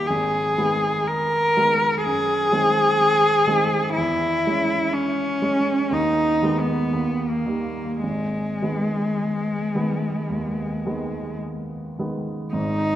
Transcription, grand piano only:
0.10 G#1
0.58 D#3 G#3 B3
1.57 D#3 G#3 B3
2.05 F#2
2.52 D#3 G#3 C4
3.47 D#3 G#3 C4
3.97 E2
4.47 G#3 C#4
5.42 G#3 C#4
5.91 D#2
6.42 D#3 G#3 B3
6.93 D#2
7.46 D#3 G3 A#3
8.03 G#1
8.62 D#3 G#3 B3
9.75 D#3 G#3 B3
10.30 D#2
10.86 D#3 G#3 B3
11.99 D#3 G#3 B3
12.53 G#1 G#2

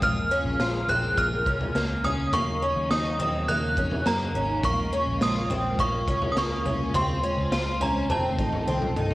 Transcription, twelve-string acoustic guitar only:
0.02 A#3
0.31 C#4
0.60 F4
0.89 C4
1.18 A#3
1.47 C#4
1.76 A#3
2.04 C#4
2.33 A#3
2.62 C#4
2.91 D#4
3.20 C4
3.49 A#3
3.78 C#4
4.06 A#3
4.35 C#4
4.64 A#3
4.93 C#4
5.22 F4
5.51 C4
5.79 A#3
6.08 C#4
6.37 A#3
6.66 C#4
6.95 C4
7.23 C#4
7.52 F4
7.81 C#4
8.10 C4
8.39 D#4
8.68 C4
8.97 D#4

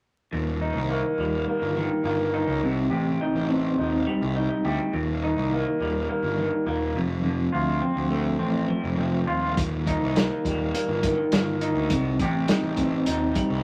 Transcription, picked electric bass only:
0.32 D#1
0.74 C2
1.18 D#1
1.62 G1
2.04 G1
2.47 C#2
2.63 C2
2.91 A1
3.35 A1
3.79 D#1
4.22 C2
4.64 D2
4.93 D#1
5.37 C2
5.80 D#1
6.23 G1
6.66 D#1
6.95 F1
7.54 D2
7.96 D2
8.40 A1
8.83 F1
8.97 F1
9.28 D#1
9.57 D#1
10.01 C2
10.45 D#1
10.88 G1
11.32 G1
11.74 D2
11.91 C2
12.19 A1
12.62 A1
13.07 D#1
13.50 C2

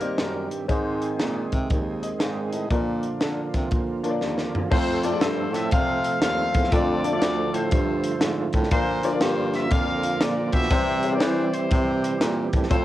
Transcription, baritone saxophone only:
Already playing: G2
0.18 F#2
0.50 G2
0.69 G#2
1.18 A#2
1.53 C3
1.70 D#2
2.20 G#2
2.53 A2
2.71 A#2
3.21 D3
3.54 C3
3.72 A#2
4.04 A#2
4.22 D#2
4.71 F2
5.22 G2
5.53 A2
5.72 C3
6.21 D#2
6.55 E2
6.72 F2
7.21 D2
7.53 A2
7.72 G2
8.21 G#2
8.54 A2
8.71 A#2
9.21 G2
9.71 F2
10.20 A#2
10.53 B2
10.71 C3
11.20 E3
11.71 C3
12.20 A#2
12.54 A2
12.70 F2

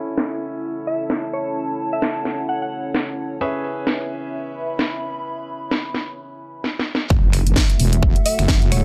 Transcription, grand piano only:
Already playing: C#4 E4 A4 E5
3.41 C#4 G#4 B4 E5

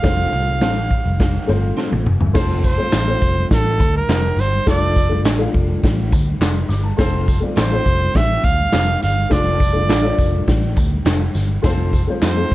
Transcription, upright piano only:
0.03 A3 C4 F4 C5
1.47 A3 C4 F4 C5
2.34 A3 C4 F4 C5
2.77 A3 C4 F4 C5
3.07 A3 C4 F4 C5
4.66 A3 D4 F4 D5
5.09 A3 D4 F4 D5
5.38 A3 D4 F4 F5
6.40 C6
6.69 D6
6.84 A5
6.98 A3 C4 F4 C5
7.40 A3 C4 F4 D5
7.71 A3 C4 F4 C5
9.30 A3 D4 F4 D5
9.73 A3 D4 F4 D5
10.02 A3 D4 F4 C#5
10.10 D5
11.63 A3 C4 F4 C5
12.07 A3 C4 F4 C5
12.36 A3 C4 F4 A4

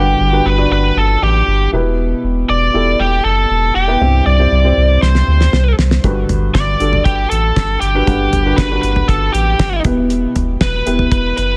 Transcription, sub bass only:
Already playing: G1
0.20 G1
0.45 G1
0.71 G1
0.96 G1
1.22 A1
1.47 G1
1.73 E1
2.24 E1
2.49 E1
2.74 E1
2.99 E1
3.25 F#1
3.50 E1
3.75 E1
4.01 C2
4.26 C2
4.51 C2
4.77 C2
5.02 C2
5.28 D2
5.53 C2
5.78 C2
6.04 G1
6.29 G1
6.55 G1
6.80 G1
7.05 G1
7.31 A1
7.57 G1
7.82 G1
8.08 G1
8.33 G1
8.58 G1
8.83 G1
9.09 G1
9.34 A1
9.60 G1
9.85 E1
10.36 E1
10.61 E1
10.87 E1
11.12 E1
11.38 F#1

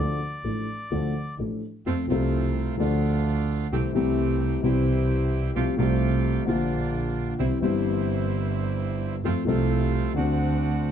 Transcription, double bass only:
Already playing: D2
0.44 A1
0.91 D2
1.38 A1
1.86 F2
2.09 C2
2.79 D2
3.72 C2
3.95 C2
4.64 C2
5.55 C2
5.78 C2
6.47 A#1
7.39 C2
7.62 G1
9.24 F2
9.47 C2
10.15 D2

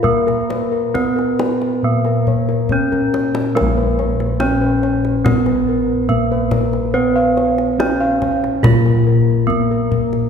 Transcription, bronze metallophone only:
0.04 A#3
0.94 B3
1.85 A#3
2.72 C#4
3.55 A#3
4.40 C#4
5.25 B3
6.09 A#3
6.94 B3
7.80 C#4
8.63 F4
9.47 A#3

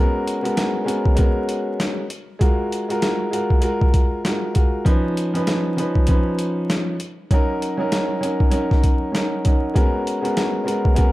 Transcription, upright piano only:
Already playing: G#3 B3 C#4 F#4 A#4
0.42 G#3 B3 C#4 F#4 A#4
0.84 G#3 B3 C#4 F#4 A#4
1.15 G#3 B3 C#4 F#4 A#4
2.39 G#3 F4 F#4 A#4
2.89 G#3 F4 F#4 A#4
3.31 G#3 F4 F#4 A#4
3.61 G#3 F4 F#4 A#4
4.24 G#3 F4 F#4 A#4
4.54 G#3 F4 F#4 A#4
4.85 F3 C#4 D#4 B4
5.34 F3 C#4 D#4 B4
5.77 F3 C#4 D#4 B4
6.08 F3 C#4 D#4 B4
7.31 F#3 C#4 D#4 A#4
7.77 F#3 C#4 D#4 A#4
8.21 F#3 C#4 D#4 A#4
8.50 F#3 C#4 D#4 A#4
9.12 F#3 C#4 D#4 A#4
9.44 F#3 C#4 D#4 A#4
9.74 G#3 B3 C#4 F#4 A#4
10.21 G#3 B3 C#4 F#4 A#4
10.64 G#3 B3 C#4 F#4 A#4
10.95 G#3 B3 C#4 F#4 A#4

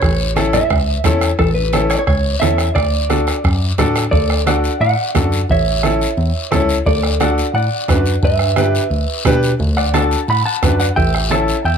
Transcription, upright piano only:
0.36 C#4 E4 A4
1.05 C#4 E4 A4
1.73 C#4 E4 A4
2.41 C#4 E4 A4
3.09 D4 F#4 A4
3.78 D4 F#4 A4
4.46 D4 F#4 A4
5.15 D4 F#4 A4
5.83 C#4 E4 A4
6.51 C#4 E4 A4
7.20 D4 F#4 A4
7.88 D4 F#4 B4
8.57 D4 G4 B4
9.25 D4 G4 B4
9.94 D4 F#4 A4
10.63 D4 F#4 B4
11.31 C#4 E4 A4

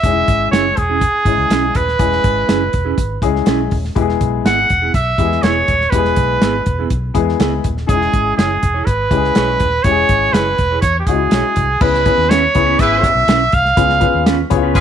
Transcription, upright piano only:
0.05 G#3 C#4 D#4 G#4
0.11 E4
1.26 G#3 C#4 E4 G#4
1.99 G#3 C#4 E4 G#4
3.22 G#3 C#4 E4 G#4
3.95 G#3 B3 E4 G4
4.01 G#4
5.18 G#3 B3 E4 G4
5.24 G#4
5.92 G#3 B3 E4 G4
5.98 G#4
7.14 G#3 B3 E4 G#4
7.87 G#3 C#4 D#4 G#4
7.93 E4
9.10 G#3 C#4 E4 G4
9.17 G#4
9.85 G#3 C#4 E4 G4
9.91 G#4
11.08 G#3 C#4 D#4 F#4
11.14 E4
11.81 B3 C#4 E4 G#4 B4
12.05 B3 C#4 E4 G#4 B4
12.55 B3 C#4 E4 G#4 B4
13.77 B3 C#4 F4 G#4 B4
14.00 B3 C#4 F4 G#4 B4
14.50 B3 C#4 E4 G#4 C#5
14.56 F4

